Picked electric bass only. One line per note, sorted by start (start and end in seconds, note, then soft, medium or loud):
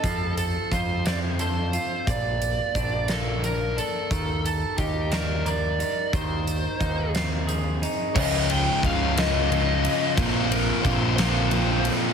0.04 0.56 F2 medium
0.72 1.76 F2 medium
2.07 2.59 A#1 medium
2.75 3.79 A#1 medium
4.11 4.63 D#2 medium
4.78 5.82 D#2 medium
6.13 6.65 D#2 medium
6.81 7.84 D#2 medium
8.16 8.67 C#2 medium
8.83 9.86 C#2 medium
10.18 10.69 A#1 medium
10.85 11.88 A#1 medium